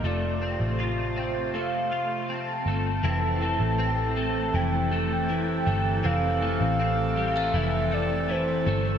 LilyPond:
<<
  \new Staff \with { instrumentName = "Soft synth lead" } { \time 4/4 \key f \major \tempo 4 = 80 d''4 r8 c''8 f''4 a''8 a''8~ | a''2 g''2 | f''2 e''8 d''8 c''8. r16 | }
  \new Staff \with { instrumentName = "Clean electric guitar" } { \time 4/4 \key f \major a8 c'8 f'8 c'8 a8 f'8 c'8 a8 | <e c'>8 a8 c'8 a8 e8 a8 e8 a8 | <e c'>8 a8 c'8 g16 a16 e8 a8 e8 a8 | }
  \new Staff \with { instrumentName = "Woodwind section" } { \clef bass \time 4/4 \key f \major <c f a f'>1 | <c e c' a'>1~ | <c e c' a'>1 | }
  \new Staff \with { instrumentName = "Picked electric bass" } { \clef bass \time 4/4 \key f \major f,,8. a,,4~ a,,16 f,,4. g,,8 | f,,8. a,,4~ a,,16 f,,4. g,,8 | f,,8. a,,4~ a,,16 f,,4. g,,8 | }
>>